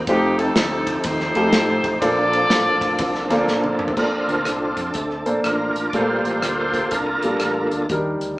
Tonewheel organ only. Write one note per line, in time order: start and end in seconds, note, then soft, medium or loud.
0.08 1.99 F3 medium
0.08 1.98 A3 medium
0.08 1.98 C4 medium
0.08 1.99 D#4 medium
0.08 0.15 F#4 medium
0.14 2.01 G4 medium
2.03 3.94 F3 medium
2.03 3.94 A#3 medium
2.03 3.94 C4 medium
2.03 3.94 D4 medium
2.03 2.10 G#4 medium
2.09 3.96 A4 medium
3.97 4.45 C4 soft
3.97 4.45 D4 medium
3.97 4.91 F4 medium
3.97 4.46 A4 soft
3.97 4.48 A#4 medium
4.46 4.95 C4 medium
4.46 4.95 D4 medium
4.46 5.41 A4 medium
4.96 5.24 A3 soft
4.96 5.24 C4 soft
4.96 5.24 D4 soft
5.46 5.91 D4 medium
5.46 5.91 F4 medium
5.46 5.86 A#4 medium
5.90 5.94 D5 medium
5.94 7.87 A#3 soft
5.94 6.89 F4 medium
5.94 6.89 G4 medium
5.94 7.86 A4 medium
5.94 6.96 C5 medium
6.91 7.86 D4 medium
6.91 7.85 F4 medium
6.91 7.69 A#4 medium